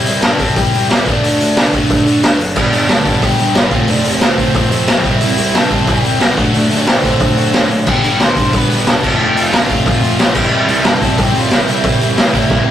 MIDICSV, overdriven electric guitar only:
0, 0, Header, 1, 2, 480
1, 0, Start_track
1, 0, Tempo, 331675
1, 1782, Time_signature, 4, 2, 24, 8
1, 18391, End_track
2, 0, Start_track
2, 0, Title_t, "Overdriven electric guitar"
2, 0, Program_c, 0, 29
2, 0, Note_on_c, 0, 64, 79
2, 0, Note_on_c, 0, 76, 97
2, 304, Note_on_c, 0, 69, 69
2, 306, Note_off_c, 0, 64, 0
2, 315, Note_on_c, 0, 81, 85
2, 349, Note_off_c, 0, 76, 0
2, 768, Note_off_c, 0, 69, 0
2, 771, Note_off_c, 0, 81, 0
2, 821, Note_on_c, 0, 79, 95
2, 828, Note_on_c, 0, 67, 80
2, 1271, Note_off_c, 0, 67, 0
2, 1287, Note_on_c, 0, 76, 95
2, 1289, Note_off_c, 0, 79, 0
2, 1295, Note_on_c, 0, 64, 72
2, 1521, Note_off_c, 0, 64, 0
2, 1541, Note_off_c, 0, 76, 0
2, 1553, Note_on_c, 0, 62, 69
2, 1562, Note_on_c, 0, 74, 77
2, 3411, Note_off_c, 0, 62, 0
2, 3412, Note_off_c, 0, 74, 0
2, 3723, Note_on_c, 0, 62, 75
2, 3727, Note_on_c, 0, 74, 85
2, 4159, Note_off_c, 0, 74, 0
2, 4161, Note_off_c, 0, 62, 0
2, 4212, Note_on_c, 0, 69, 69
2, 4212, Note_on_c, 0, 81, 82
2, 4642, Note_off_c, 0, 81, 0
2, 4645, Note_off_c, 0, 69, 0
2, 4675, Note_on_c, 0, 67, 76
2, 4687, Note_on_c, 0, 79, 91
2, 5117, Note_off_c, 0, 67, 0
2, 5159, Note_off_c, 0, 79, 0
2, 5161, Note_on_c, 0, 65, 65
2, 5165, Note_on_c, 0, 77, 86
2, 5599, Note_off_c, 0, 65, 0
2, 5631, Note_on_c, 0, 62, 72
2, 5644, Note_off_c, 0, 77, 0
2, 5649, Note_on_c, 0, 74, 95
2, 5850, Note_off_c, 0, 62, 0
2, 5860, Note_off_c, 0, 74, 0
2, 5885, Note_on_c, 0, 60, 70
2, 5890, Note_on_c, 0, 72, 76
2, 6321, Note_off_c, 0, 72, 0
2, 6322, Note_off_c, 0, 60, 0
2, 6359, Note_on_c, 0, 60, 75
2, 6378, Note_on_c, 0, 72, 87
2, 7253, Note_off_c, 0, 60, 0
2, 7263, Note_off_c, 0, 72, 0
2, 7524, Note_on_c, 0, 64, 78
2, 7542, Note_on_c, 0, 76, 96
2, 7980, Note_off_c, 0, 64, 0
2, 8025, Note_on_c, 0, 69, 72
2, 8037, Note_off_c, 0, 76, 0
2, 8040, Note_on_c, 0, 81, 97
2, 8471, Note_off_c, 0, 69, 0
2, 8517, Note_on_c, 0, 67, 78
2, 8524, Note_off_c, 0, 81, 0
2, 8530, Note_on_c, 0, 79, 108
2, 8958, Note_off_c, 0, 67, 0
2, 9011, Note_off_c, 0, 79, 0
2, 9018, Note_on_c, 0, 66, 73
2, 9029, Note_on_c, 0, 78, 95
2, 9449, Note_off_c, 0, 66, 0
2, 9501, Note_off_c, 0, 78, 0
2, 9508, Note_on_c, 0, 62, 73
2, 9524, Note_on_c, 0, 74, 100
2, 9580, Note_off_c, 0, 62, 0
2, 9596, Note_off_c, 0, 74, 0
2, 9754, Note_on_c, 0, 60, 66
2, 9781, Note_on_c, 0, 72, 86
2, 10178, Note_off_c, 0, 60, 0
2, 10188, Note_off_c, 0, 72, 0
2, 10202, Note_on_c, 0, 60, 69
2, 10210, Note_on_c, 0, 72, 83
2, 11097, Note_off_c, 0, 60, 0
2, 11098, Note_off_c, 0, 72, 0
2, 11416, Note_on_c, 0, 67, 81
2, 11434, Note_on_c, 0, 79, 97
2, 11848, Note_off_c, 0, 67, 0
2, 11858, Note_off_c, 0, 79, 0
2, 11900, Note_on_c, 0, 72, 74
2, 11912, Note_on_c, 0, 84, 105
2, 12331, Note_off_c, 0, 72, 0
2, 12337, Note_off_c, 0, 84, 0
2, 12396, Note_on_c, 0, 71, 86
2, 12404, Note_on_c, 0, 83, 109
2, 12819, Note_off_c, 0, 71, 0
2, 12824, Note_off_c, 0, 83, 0
2, 12877, Note_on_c, 0, 69, 82
2, 12897, Note_on_c, 0, 81, 106
2, 13300, Note_off_c, 0, 69, 0
2, 13311, Note_off_c, 0, 81, 0
2, 13379, Note_on_c, 0, 67, 78
2, 13388, Note_on_c, 0, 79, 105
2, 13568, Note_off_c, 0, 67, 0
2, 13574, Note_off_c, 0, 79, 0
2, 13616, Note_on_c, 0, 65, 71
2, 13629, Note_on_c, 0, 77, 96
2, 14030, Note_off_c, 0, 65, 0
2, 14050, Note_on_c, 0, 65, 79
2, 14056, Note_off_c, 0, 77, 0
2, 14074, Note_on_c, 0, 77, 105
2, 14940, Note_off_c, 0, 65, 0
2, 14952, Note_off_c, 0, 77, 0
2, 15257, Note_on_c, 0, 64, 80
2, 15279, Note_on_c, 0, 76, 97
2, 15689, Note_off_c, 0, 64, 0
2, 15701, Note_off_c, 0, 76, 0
2, 15755, Note_on_c, 0, 69, 70
2, 15776, Note_on_c, 0, 81, 94
2, 16178, Note_off_c, 0, 69, 0
2, 16230, Note_on_c, 0, 67, 87
2, 16234, Note_off_c, 0, 81, 0
2, 16270, Note_on_c, 0, 79, 107
2, 16428, Note_off_c, 0, 67, 0
2, 16434, Note_on_c, 0, 65, 78
2, 16468, Note_on_c, 0, 77, 92
2, 16473, Note_off_c, 0, 79, 0
2, 16652, Note_off_c, 0, 65, 0
2, 16682, Note_on_c, 0, 64, 75
2, 16692, Note_off_c, 0, 77, 0
2, 16697, Note_on_c, 0, 76, 96
2, 16897, Note_off_c, 0, 64, 0
2, 16927, Note_off_c, 0, 76, 0
2, 16930, Note_on_c, 0, 64, 68
2, 16945, Note_on_c, 0, 76, 85
2, 18391, Note_off_c, 0, 64, 0
2, 18391, Note_off_c, 0, 76, 0
2, 18391, End_track
0, 0, End_of_file